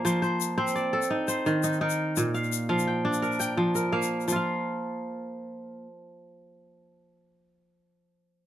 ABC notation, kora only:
X:1
M:12/8
L:1/8
Q:3/8=114
K:Bb
V:1 name="Kora"
[cf] c2 c d2 E c2 E B2- | B f2 f g2 B g2 B f2- | f z8 z3 | z12 |]
V:2 name="Kora"
F,2 z C2 A z2 E,2 E2 | B,,2 z F,2 D2 z F,2 B,2 | [F,Ff]12- | [F,Ff]12 |]